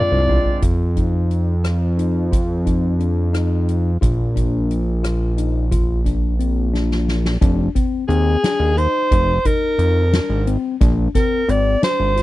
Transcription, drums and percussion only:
0.28 floor tom medium
0.45 floor tom medium
0.62 kick medium
0.62 closed hi-hat medium
0.97 kick medium
0.97 closed hi-hat soft
1.31 closed hi-hat soft
1.64 cross-stick medium
1.64 closed hi-hat medium
1.99 closed hi-hat soft
2.33 kick medium
2.33 closed hi-hat medium
2.66 kick medium
2.66 closed hi-hat soft
3.00 closed hi-hat soft
3.34 cross-stick medium
3.34 closed hi-hat medium
3.69 closed hi-hat soft
4.02 kick medium
4.02 closed hi-hat medium
4.36 kick medium
4.36 closed hi-hat soft
4.71 closed hi-hat soft
5.04 cross-stick medium
5.04 closed hi-hat medium
5.38 closed hi-hat soft
5.72 kick medium
5.72 closed hi-hat medium
6.06 kick medium
6.06 closed hi-hat soft
6.40 closed hi-hat soft
6.74 snare soft
6.91 snare soft
7.08 snare medium
7.25 snare medium
7.42 kick loud
7.42 closed hi-hat medium
7.76 kick medium
7.76 closed hi-hat medium
8.10 closed hi-hat soft
8.44 snare loud
8.44 closed hi-hat medium
8.78 closed hi-hat soft
9.11 kick loud
9.11 closed hi-hat medium
9.45 kick medium
9.45 closed hi-hat medium
9.79 closed hi-hat medium
10.13 snare loud
10.13 closed hi-hat medium
10.47 closed hi-hat medium
10.81 kick loud
10.81 closed hi-hat medium
11.15 kick medium
11.15 snare soft
11.15 closed hi-hat medium
11.49 closed hi-hat medium
11.83 snare medium
11.83 closed hi-hat medium
12.17 snare soft
12.17 closed hi-hat medium

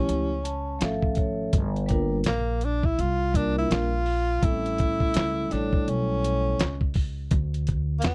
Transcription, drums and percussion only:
0.09 closed hi-hat medium
0.45 closed hi-hat medium
0.81 snare loud
0.81 closed hi-hat medium
1.02 kick medium
1.15 kick medium
1.15 closed hi-hat medium
1.53 kick loud
1.53 closed hi-hat medium
1.76 closed hi-hat medium
1.89 kick medium
1.89 closed hi-hat medium
2.24 snare loud
2.24 closed hi-hat medium
2.61 closed hi-hat medium
2.83 kick medium
2.99 closed hi-hat medium
3.34 kick medium
3.34 closed hi-hat medium
3.71 snare loud
3.71 closed hi-hat medium
4.06 open hi-hat soft
4.43 kick loud
4.43 closed hi-hat medium
4.66 closed hi-hat medium
4.78 kick medium
4.78 closed hi-hat medium
5.00 kick medium
5.14 snare loud
5.14 closed hi-hat loud
5.51 snare soft
5.51 closed hi-hat medium
5.73 kick medium
5.88 closed hi-hat medium
6.24 closed hi-hat medium
6.59 snare loud
6.59 closed hi-hat medium
6.81 kick medium
6.94 kick loud
6.94 open hi-hat medium
7.31 kick loud
7.31 closed hi-hat medium
7.54 closed hi-hat medium
7.67 kick medium
7.67 closed hi-hat medium
8.02 snare loud
8.02 closed hi-hat loud

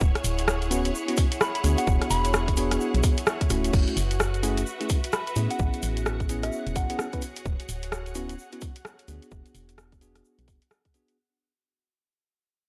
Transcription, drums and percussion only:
0.00 kick loud
0.00 shaker medium
0.15 cross-stick medium
0.15 closed hi-hat soft
0.15 shaker soft
0.24 open hi-hat loud
0.24 shaker medium
0.38 closed hi-hat medium
0.38 shaker soft
0.48 cross-stick loud
0.48 shaker medium
0.62 closed hi-hat soft
0.62 shaker soft
0.71 open hi-hat loud
0.71 shaker medium
0.85 closed hi-hat medium
0.85 shaker soft
0.95 shaker medium
1.08 closed hi-hat medium
1.08 shaker soft
1.17 kick loud
1.17 open hi-hat loud
1.17 shaker medium
1.32 closed hi-hat medium
1.32 shaker soft
1.41 cross-stick loud
1.41 shaker soft
1.55 closed hi-hat medium
1.55 shaker soft
1.64 cross-stick soft
1.64 open hi-hat medium
1.64 shaker medium
1.78 closed hi-hat medium
1.78 shaker soft
1.87 kick loud
1.87 shaker soft
2.02 cross-stick medium
2.02 closed hi-hat soft
2.02 shaker soft
2.10 open hi-hat loud
2.10 shaker medium
2.25 closed hi-hat medium
2.25 shaker soft
2.33 cross-stick loud
2.33 shaker medium
2.48 kick medium
2.48 closed hi-hat soft
2.48 shaker soft
2.57 open hi-hat loud
2.57 shaker medium
2.71 cross-stick medium
2.71 closed hi-hat medium
2.71 shaker soft
2.81 shaker medium
2.94 closed hi-hat medium
2.94 shaker soft
3.03 kick loud
3.03 open hi-hat loud
3.03 shaker medium
3.17 closed hi-hat medium
3.17 shaker soft
3.27 cross-stick loud
3.27 shaker medium
3.41 kick medium
3.41 closed hi-hat medium
3.41 shaker soft
3.50 cross-stick soft
3.50 open hi-hat medium
3.50 shaker medium
3.64 closed hi-hat medium
3.64 shaker soft
3.73 kick loud
3.73 crash medium
3.73 shaker soft
3.88 closed hi-hat soft
3.88 shaker soft
3.97 open hi-hat loud
3.97 shaker medium
4.11 closed hi-hat medium
4.11 shaker soft
4.20 cross-stick loud
4.20 shaker medium
4.34 closed hi-hat soft
4.34 shaker soft
4.43 open hi-hat medium
4.43 shaker medium
4.57 closed hi-hat medium
4.57 shaker soft
4.66 shaker soft
4.81 closed hi-hat medium
4.81 shaker soft
4.89 kick loud
4.89 open hi-hat loud
4.89 shaker medium
5.04 closed hi-hat medium
5.04 shaker soft
5.13 cross-stick loud
5.13 shaker medium
5.27 closed hi-hat medium
5.27 shaker soft
5.36 open hi-hat medium
5.36 shaker medium
5.51 closed hi-hat medium
5.51 shaker soft
5.59 kick loud
5.59 shaker soft
5.73 closed hi-hat soft
5.73 shaker soft
5.83 open hi-hat loud
5.83 shaker loud
5.97 closed hi-hat medium
5.97 shaker soft
6.06 cross-stick loud
6.06 shaker medium
6.20 kick medium
6.20 closed hi-hat soft
6.20 shaker soft
6.29 open hi-hat medium
6.29 shaker medium
6.43 cross-stick medium
6.43 closed hi-hat medium
6.43 shaker soft
6.52 shaker soft
6.67 closed hi-hat soft
6.67 shaker soft
6.76 kick loud
6.76 open hi-hat loud
6.76 shaker medium
6.90 closed hi-hat medium
6.90 shaker soft
6.99 cross-stick loud
6.99 shaker medium
7.13 kick medium
7.13 closed hi-hat soft
7.13 shaker soft
7.22 open hi-hat medium
7.22 shaker medium
7.36 closed hi-hat medium
7.36 shaker soft
7.46 kick loud
7.46 shaker medium
7.60 closed hi-hat soft
7.60 shaker soft
7.69 open hi-hat loud
7.69 shaker medium
7.83 closed hi-hat medium
7.83 shaker soft
7.92 cross-stick loud
7.92 shaker medium
8.06 closed hi-hat soft
8.06 shaker soft
8.15 open hi-hat medium
8.15 shaker medium
8.29 closed hi-hat medium
8.29 shaker soft
8.39 shaker soft
8.52 closed hi-hat soft
8.52 shaker soft
8.61 kick loud
8.61 open hi-hat loud
8.61 shaker loud
8.76 closed hi-hat medium
8.76 shaker soft
8.85 cross-stick loud
8.85 shaker soft
8.99 closed hi-hat soft
8.99 shaker soft
9.08 open hi-hat medium
9.08 shaker medium
9.22 closed hi-hat medium
9.22 shaker soft
9.31 kick loud
9.31 shaker medium
9.46 closed hi-hat soft
9.46 shaker soft
9.55 open hi-hat medium
9.55 shaker medium
9.69 closed hi-hat medium
9.69 shaker soft
9.78 cross-stick loud
9.78 shaker medium
9.92 kick medium
9.92 closed hi-hat soft
9.92 shaker soft
10.01 open hi-hat medium
10.01 shaker loud
10.15 cross-stick medium
10.15 closed hi-hat medium
10.15 shaker soft
10.25 shaker medium
10.39 closed hi-hat soft
10.39 shaker soft
10.48 kick loud
10.48 open hi-hat loud
10.48 shaker loud
10.62 closed hi-hat medium
10.62 shaker soft
10.71 cross-stick loud
10.71 shaker soft
10.85 kick medium
10.85 closed hi-hat soft
10.85 shaker soft
10.94 open hi-hat medium
10.94 shaker medium
11.08 closed hi-hat medium
11.08 shaker soft

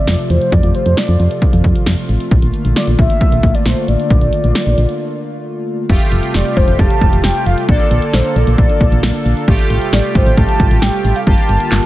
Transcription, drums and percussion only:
0.07 snare loud
0.07 closed hi-hat medium
0.19 closed hi-hat medium
0.30 closed hi-hat medium
0.41 closed hi-hat medium
0.52 kick loud
0.52 closed hi-hat medium
0.63 closed hi-hat medium
0.75 closed hi-hat medium
0.86 closed hi-hat medium
0.97 snare loud
0.97 closed hi-hat medium
1.08 closed hi-hat soft
1.20 closed hi-hat medium
1.31 closed hi-hat medium
1.42 kick medium
1.42 closed hi-hat medium
1.53 closed hi-hat soft
1.64 kick medium
1.64 closed hi-hat medium
1.76 closed hi-hat medium
1.86 snare loud
1.86 closed hi-hat medium
1.98 closed hi-hat soft
2.09 closed hi-hat medium
2.20 closed hi-hat medium
2.31 kick loud
2.31 closed hi-hat medium
2.42 closed hi-hat medium
2.54 closed hi-hat medium
2.65 closed hi-hat medium
2.76 snare loud
2.76 closed hi-hat medium
2.87 closed hi-hat soft
2.99 kick medium
2.99 closed hi-hat medium
3.10 closed hi-hat medium
3.21 kick medium
3.21 closed hi-hat medium
3.32 closed hi-hat soft
3.43 kick medium
3.43 closed hi-hat medium
3.55 closed hi-hat medium
3.66 snare loud
3.66 closed hi-hat medium
3.77 closed hi-hat soft
3.88 closed hi-hat medium
4.00 closed hi-hat medium
4.10 kick loud
4.10 closed hi-hat medium
4.21 closed hi-hat medium
4.33 closed hi-hat medium
4.44 closed hi-hat medium
4.55 snare loud
4.55 closed hi-hat medium
4.66 closed hi-hat soft
4.78 closed hi-hat medium
4.89 closed hi-hat medium
5.90 kick loud
5.90 closed hi-hat medium
5.90 crash medium
6.00 closed hi-hat medium
6.12 closed hi-hat medium
6.23 closed hi-hat medium
6.34 snare loud
6.34 closed hi-hat medium
6.45 closed hi-hat soft
6.57 kick medium
6.57 closed hi-hat medium
6.68 closed hi-hat medium
6.79 kick medium
6.79 closed hi-hat medium
6.90 closed hi-hat soft
7.01 kick medium
7.01 closed hi-hat medium
7.13 closed hi-hat medium
7.24 snare loud
7.24 closed hi-hat medium
7.35 closed hi-hat soft
7.46 closed hi-hat medium
7.58 closed hi-hat medium
7.69 kick loud
7.69 closed hi-hat medium
7.80 closed hi-hat medium
7.91 closed hi-hat medium
8.02 closed hi-hat medium
8.14 snare loud
8.14 closed hi-hat medium
8.25 closed hi-hat soft
8.36 closed hi-hat medium
8.47 closed hi-hat medium
8.58 kick medium
8.58 closed hi-hat medium
8.69 closed hi-hat soft
8.81 kick medium
8.81 closed hi-hat medium
8.92 closed hi-hat medium
9.03 snare loud
9.03 closed hi-hat medium
9.14 closed hi-hat medium
9.26 open hi-hat medium
9.37 closed hi-hat medium
9.48 kick loud
9.48 closed hi-hat medium
9.59 closed hi-hat medium
9.70 closed hi-hat medium
9.81 closed hi-hat medium
9.93 snare loud
9.93 closed hi-hat medium
10.04 closed hi-hat soft
10.15 kick medium
10.15 closed hi-hat medium
10.26 closed hi-hat medium
10.37 kick medium
10.37 closed hi-hat medium
10.49 closed hi-hat soft
10.60 kick medium
10.60 closed hi-hat medium
10.71 closed hi-hat medium
10.82 snare loud
10.82 closed hi-hat medium
10.93 closed hi-hat medium
11.05 open hi-hat medium
11.16 closed hi-hat medium
11.27 kick loud
11.27 closed hi-hat medium
11.38 closed hi-hat medium
11.49 closed hi-hat medium
11.60 closed hi-hat medium
11.72 snare loud
11.72 clap loud
11.72 closed hi-hat medium
11.83 closed hi-hat soft

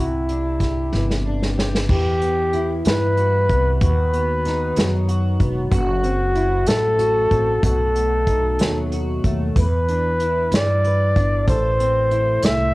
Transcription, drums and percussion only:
0.29 closed hi-hat soft
0.60 kick medium
0.60 snare soft
0.60 closed hi-hat soft
0.94 snare soft
1.11 snare medium
1.42 snare medium
1.59 snare medium
1.75 snare medium
1.89 kick loud
1.89 crash medium
2.21 closed hi-hat soft
2.53 closed hi-hat medium
2.85 snare loud
2.85 closed hi-hat medium
3.17 closed hi-hat soft
3.49 kick medium
3.49 closed hi-hat soft
3.81 kick loud
3.81 closed hi-hat medium
4.13 closed hi-hat soft
4.45 snare soft
4.45 closed hi-hat medium
4.76 snare loud
4.76 closed hi-hat medium
5.09 closed hi-hat soft
5.40 kick medium
5.40 closed hi-hat soft
5.72 kick loud
5.72 closed hi-hat medium
6.04 closed hi-hat medium
6.35 closed hi-hat medium
6.66 snare loud
6.66 closed hi-hat medium
6.99 closed hi-hat medium
7.31 kick medium
7.31 closed hi-hat soft
7.63 kick loud
7.63 closed hi-hat medium
7.96 closed hi-hat medium
8.27 kick medium
8.27 closed hi-hat soft
8.59 snare loud
8.59 closed hi-hat medium
8.92 closed hi-hat soft
9.24 kick medium
9.24 closed hi-hat soft
9.56 kick loud
9.56 closed hi-hat medium
9.88 closed hi-hat soft
10.20 closed hi-hat medium
10.52 snare loud
10.52 closed hi-hat medium
10.84 closed hi-hat medium
11.16 kick medium
11.16 closed hi-hat soft
11.48 kick loud
11.48 closed hi-hat medium
11.80 closed hi-hat medium
12.11 closed hi-hat medium
12.43 snare loud
12.43 closed hi-hat medium

